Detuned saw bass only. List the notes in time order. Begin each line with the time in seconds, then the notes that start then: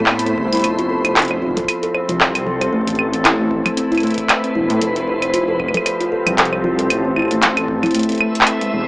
0.00 A2
0.38 C2
0.53 C2
0.64 F1
1.42 F1
2.09 C2
2.73 A1
3.51 A1
4.55 E1
4.70 A2
4.81 F1
5.60 F1
6.27 C2
6.90 A1
7.68 A1
8.73 E1